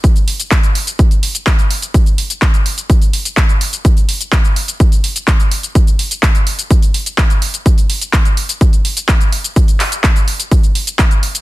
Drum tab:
HH |xxoxxxoxxxoxxxox|xxoxxxoxxxoxxxox|xxoxxxoxxxoxxxox|xxoxxxoxxxoxxxox|
SH |xx-xxx-xxx-xxx-x|xx-xxx-xxx-xxx-x|xx-xxx-xxx-xxx-x|xx-xxx-xxx-xxx-x|
CP |----x-------x---|----x-------x---|----x-------x---|----x-------x---|
BD |o---o---o---o---|o---o---o---o---|o---o---o---o---|o---o---o---o---|

HH |xxoxxxoxxxoxxxox|xxoxxxoxxxoxxxox|
SH |xx-xxx-xxx-xxx-x|xx-xxx-xxx-xxx-x|
CP |----x-------x---|--x-x-------x---|
BD |o---o---o---o---|o---o---o---o---|